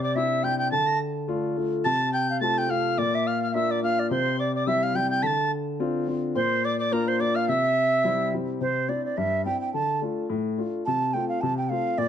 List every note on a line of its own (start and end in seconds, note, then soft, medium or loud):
0.00 0.69 C3 medium
0.00 0.17 D5 medium
0.00 0.15 D6 medium
0.15 0.42 C4 soft
0.15 0.42 D4 medium
0.15 0.43 E4 medium
0.15 0.45 E5 medium
0.15 0.46 E6 medium
0.43 0.71 C4 soft
0.43 0.71 D4 soft
0.43 0.71 E4 medium
0.43 0.58 G5 loud
0.43 0.58 G6 medium
0.58 0.70 G5 medium
0.58 0.71 G6 medium
0.71 1.81 D3 medium
0.71 0.98 A5 loud
0.71 0.88 A6 medium
0.87 1.00 A#6 medium
1.28 1.55 A3 medium
1.28 1.56 D4 medium
1.28 1.56 F4 medium
1.57 1.84 A3 soft
1.57 1.84 D4 soft
1.57 1.84 F4 soft
1.84 2.95 C3 medium
1.84 2.11 A5 loud
1.84 2.11 A6 medium
2.13 2.28 G5 medium
2.13 2.39 G6 medium
2.30 2.41 F5 medium
2.41 2.67 A3 medium
2.41 2.67 C4 medium
2.41 2.68 F4 medium
2.41 2.60 A5 loud
2.41 2.59 A6 medium
2.58 2.72 G5 medium
2.58 2.71 G6 medium
2.68 2.96 A3 soft
2.68 2.97 C4 soft
2.68 2.97 F4 soft
2.68 3.00 F5 medium
2.68 2.99 F6 medium
2.98 4.07 A#2 medium
2.98 3.16 D5 loud
2.98 3.29 D6 medium
3.15 3.28 E5 medium
3.27 3.50 F5 medium
3.27 3.42 F6 medium
3.43 3.54 F6 medium
3.51 3.81 A#3 medium
3.51 3.81 D4 medium
3.51 3.82 F4 medium
3.51 3.72 E5 medium
3.51 3.56 F5 medium
3.55 3.73 E6 medium
3.71 3.83 D5 medium
3.71 3.83 D6 medium
3.82 4.10 A#3 soft
3.82 4.10 D4 soft
3.82 4.10 F4 soft
3.82 4.01 F5 medium
3.82 4.09 F6 medium
3.99 4.10 D5 medium
4.10 5.20 C3 medium
4.10 4.37 C5 loud
4.10 4.41 C6 medium
4.39 4.54 D5 medium
4.39 4.55 D6 medium
4.55 4.66 D5 medium
4.55 4.69 D6 medium
4.67 4.93 G3 medium
4.67 4.93 C4 soft
4.67 4.94 E4 medium
4.67 4.85 E5 medium
4.67 4.84 E6 medium
4.83 4.97 F5 medium
4.83 4.97 F6 medium
4.94 5.22 G3 soft
4.94 5.22 C4 soft
4.94 5.23 E4 soft
4.94 5.10 G5 loud
4.94 5.10 G6 medium
5.10 5.24 G5 medium
5.10 5.24 G6 medium
5.22 6.32 D3 medium
5.22 5.51 A5 loud
5.22 5.51 A6 medium
5.22 5.27 B6 medium
5.80 6.06 C4 medium
5.80 6.06 D4 soft
5.80 6.07 F4 medium
6.07 6.35 C4 soft
6.07 6.35 D4 soft
6.07 6.35 F4 soft
6.35 7.45 A#2 medium
6.35 6.66 C5 loud
6.35 6.62 C6 medium
6.64 6.79 D5 medium
6.64 6.78 D6 medium
6.79 6.94 D5 medium
6.79 6.94 D6 medium
6.91 7.19 A#3 medium
6.91 7.19 D4 medium
6.91 7.19 F4 medium
6.91 7.09 A#4 medium
6.91 7.10 A#5 medium
7.08 7.22 C5 medium
7.08 7.19 C6 medium
7.19 7.48 A#3 soft
7.19 7.47 D4 soft
7.19 7.48 F4 soft
7.19 7.38 D5 loud
7.19 7.36 D6 medium
7.35 7.50 F5 medium
7.35 7.48 F6 medium
7.48 8.58 C3 medium
7.48 8.33 E5 loud
7.48 8.29 E6 medium
8.04 8.32 G3 medium
8.04 8.32 C4 medium
8.04 8.32 E4 medium
8.33 8.60 G3 soft
8.33 8.61 C4 soft
8.33 8.61 E4 soft
8.61 8.88 C3 medium
8.61 8.90 C5 medium
8.88 9.11 C4 soft
8.88 9.12 D4 soft
8.88 9.12 E4 soft
8.88 9.05 D5 medium
9.05 9.19 D5 medium
9.17 9.45 G2 medium
9.17 9.45 E5 medium
9.45 9.68 C4 soft
9.45 9.68 D4 soft
9.45 9.68 E4 soft
9.45 9.60 G5 medium
9.61 9.73 G5 medium
9.74 10.01 D3 medium
9.74 10.00 A5 medium
10.01 10.24 A3 soft
10.01 10.25 D4 soft
10.01 10.25 F4 soft
10.29 10.57 A2 medium
10.58 10.81 A3 soft
10.58 10.81 D4 soft
10.58 10.81 F4 soft
10.86 11.14 C3 medium
10.86 11.15 A5 loud
11.13 11.37 A3 soft
11.13 11.37 C4 soft
11.13 11.37 F4 soft
11.13 11.28 G5 medium
11.29 11.43 F5 medium
11.41 11.70 C3 medium
11.41 11.57 A5 medium
11.57 11.71 G5 medium
11.69 11.93 A3 soft
11.69 11.93 C4 soft
11.69 11.94 F4 soft
11.69 12.00 F5 medium
11.98 12.08 A#2 medium
11.98 12.08 D5 loud